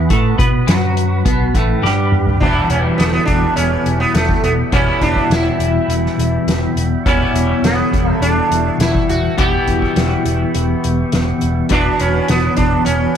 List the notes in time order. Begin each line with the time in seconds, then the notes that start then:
Already playing: B3 B4 F#5 B5
0.10 A2 A3, kick, closed hi-hat
0.38 B2 B3, kick, closed hi-hat
0.67 F#2 F#3, snare, closed hi-hat
0.97 closed hi-hat
1.25 B1 B2, kick, closed hi-hat
1.54 A1 A2, kick, closed hi-hat
1.83 G2 G3, snare
2.12 mid tom
2.27 floor tom
2.40 E1 E2 B2 E3 G3 B3 D4 E5 G5 B5, kick, crash
2.45 E4
2.70 E1 C#4, closed hi-hat
2.98 E1 B3, snare, closed hi-hat
3.05 A3
3.13 B3
3.25 E1 D4, kick, closed hi-hat
3.56 E1 C#4, closed hi-hat
3.86 E1, closed hi-hat
4.00 B3
4.15 E1 A3, snare, closed hi-hat
4.29 kick
4.43 E1 B3, closed hi-hat
4.72 E1 E2 B2 E3 G3 B3 C#4 E4, kick, closed hi-hat
5.01 E1 D4, kick, closed hi-hat
5.16 kick
5.30 E1 E4, snare, closed hi-hat
5.59 E1, closed hi-hat
5.88 E1, closed hi-hat
6.06 snare
6.18 E1, closed hi-hat
6.47 E1, snare, closed hi-hat
6.76 E1, closed hi-hat
7.04 E1 E2 B2 E3 C#4 C#6, kick, closed hi-hat
7.08 G3 B3 E4
7.34 E1, closed hi-hat
7.62 E1 B3, snare, closed hi-hat
7.93 E1, kick, closed hi-hat
8.11 A3
8.21 E1 D4, closed hi-hat
8.51 E1, closed hi-hat
8.79 E1 E4, snare, closed hi-hat
8.95 kick
9.09 E1 F#4, closed hi-hat
9.38 E1 E2 B2 E3 G3 B3 E4 G4, kick, closed hi-hat
9.67 E1, kick, closed hi-hat
9.82 kick
9.96 E1, snare, closed hi-hat
10.25 E1, closed hi-hat
10.55 E1, closed hi-hat
10.84 E1, closed hi-hat
11.12 E1, snare, closed hi-hat
11.41 E1, closed hi-hat
11.69 E1 E2 B2 F#3 B3 D4 B4 F#5 B5, kick, closed hi-hat
11.74 E4
11.99 E1 C#4, closed hi-hat
12.28 E1 B3, snare, closed hi-hat
12.57 E1 D4, kick, closed hi-hat
12.85 E1 C#4, closed hi-hat